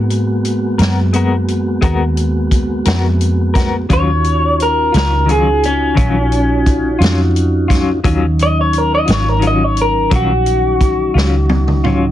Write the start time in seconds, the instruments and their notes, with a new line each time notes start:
Already playing: fingered electric bass G#2, tonewheel organ G#3 A#3 B3 F#4
0.10 closed hi-hat
0.45 closed hi-hat
0.78 fingered electric bass F#2, clean electric guitar B3 F#4 A#4, snare, closed hi-hat
1.13 clean electric guitar G#3 B3 F#4 A#4, closed hi-hat
1.48 closed hi-hat
1.81 fingered electric bass D#2, clean electric guitar G#3 B3 F#4 A#4, kick, closed hi-hat
2.17 closed hi-hat
2.51 kick, closed hi-hat
2.85 fingered electric bass F2, clean electric guitar B3 F#4 A#4, snare, closed hi-hat
3.21 closed hi-hat
3.54 clean electric guitar B3 F#4 A#4, kick, closed hi-hat
3.58 snare
3.89 fingered electric bass D#2, clean electric guitar D#3 F#3 C#4 F4, tonewheel organ C#4 D#4 F4 F#4, kick, closed hi-hat
3.93 clean electric guitar C#5
4.24 closed hi-hat
4.60 clean electric guitar A#4, closed hi-hat
4.92 fingered electric bass C#2, clean electric guitar F#3 C#4 F4 A#4, closed hi-hat
4.97 snare
5.26 clean electric guitar D#3 F#3 C#4, closed hi-hat
5.30 clean electric guitar F4 G#4
5.63 clean electric guitar C#4, closed hi-hat
5.95 fingered electric bass A#1, clean electric guitar D#3 F#3 C#4 F4, kick, closed hi-hat
6.32 closed hi-hat
6.66 kick, closed hi-hat
6.99 fingered electric bass F2, clean electric guitar F#3 C#4 F4, closed hi-hat
7.04 snare
7.36 closed hi-hat
7.68 clean electric guitar F#3 C#4 F4, kick, closed hi-hat
7.73 snare
8.04 fingered electric bass D#2, clean electric guitar D#3 F#3 C#4 F4, tonewheel organ D#3 F#3 C#4 D#4, kick, closed hi-hat
8.39 clean electric guitar D#5, closed hi-hat
8.61 clean electric guitar C#5
8.73 closed hi-hat
8.78 clean electric guitar A#4
8.95 clean electric guitar D#5
9.05 fingered electric bass G#1, clean electric guitar C#4 F4, closed hi-hat
9.10 clean electric guitar F#3 C#5, snare
9.29 clean electric guitar A#4
9.39 clean electric guitar D#3 F#3 C#4 F4, closed hi-hat
9.47 clean electric guitar D#5
9.64 clean electric guitar C#5
9.77 closed hi-hat
9.81 clean electric guitar A#4
10.10 fingered electric bass A#1, clean electric guitar D#3 F#3 C#4 F4, kick, closed hi-hat
10.15 clean electric guitar F#4
10.46 closed hi-hat
10.81 kick, closed hi-hat
11.14 fingered electric bass C#2, clean electric guitar F#3 C#4 F4, snare
11.49 high tom
11.68 mid tom
11.84 clean electric guitar F#3 C#4 F4, mid tom